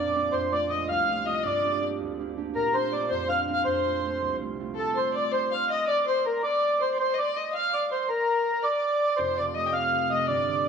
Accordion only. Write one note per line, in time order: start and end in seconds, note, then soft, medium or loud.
0.00 0.35 D5 medium
0.32 0.53 C5 medium
0.53 0.71 D5 medium
0.70 0.88 D#5 medium
0.89 1.27 F5 loud
1.27 1.45 D#5 medium
1.46 1.84 D5 medium
2.56 2.76 A#4 medium
2.74 2.93 C5 loud
2.92 3.11 D5 medium
3.09 3.28 C5 medium
3.29 3.40 F5 loud
3.42 3.52 F5 medium
3.54 3.66 F5 loud
3.65 4.36 C5 medium
4.79 4.98 A4 medium
4.97 5.15 C5 medium
5.16 5.24 D5 medium
5.33 5.53 C5 loud
5.53 5.71 F5 medium
5.70 5.88 D#5 loud
5.88 6.06 D5 loud
6.09 6.26 C5 medium
6.26 6.42 A#4 medium
6.43 6.81 D5 loud
6.82 6.97 C5 medium
7.00 7.19 C5 loud
7.19 7.36 D5 medium
7.37 7.54 D#5 medium
7.55 7.74 F5 loud
7.74 7.89 D5 loud
7.92 8.09 C5 medium
8.09 8.65 A#4 medium
8.64 9.20 D5 loud
9.17 9.38 C5 medium
9.38 9.46 D5 medium
9.56 9.74 D#5 medium
9.73 10.11 F5 loud
10.10 10.26 D#5 medium
10.28 10.67 D5 medium